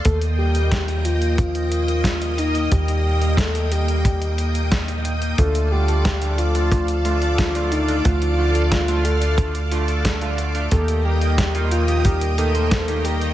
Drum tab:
HH |xx-xxxxxxxxxxxxx|xx-xxxxxxxxxxxxx|xx-xxxxxxxxxxxxx|xx-xxxxxxxxxxxxx|
SD |----o-------o---|----o-------o---|----o-------o---|----o-------o---|
BD |o---o---o---o---|o---o---o---o---|o---o---o---o---|o---o---o---o---|

HH |xx-xxxxxxxxxxxxx|
SD |----o-------o---|
BD |o---o---o---o---|